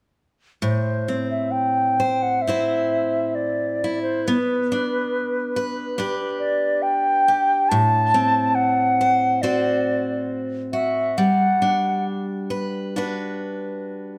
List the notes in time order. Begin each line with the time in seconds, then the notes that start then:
0.62 A2 C5
1.08 C4
1.30 E5
1.51 G5
2.00 C5
2.22 F#5
2.42 E5
2.47 C4 E4 C5
3.35 D5
3.84 E4
4.02 C5
4.22 B4 C5
4.28 B3
4.72 D4
5.56 B4
5.98 D4 G4 B4
6.39 D5
6.82 G5
7.28 G4
7.69 A2 A5
8.14 C4
8.55 F#5
9.01 C5
9.42 C4 F#4 C5 D5
10.73 F#4 E5
11.17 G3 F#5
11.62 D4
12.50 B4
12.96 D4 F#4 B4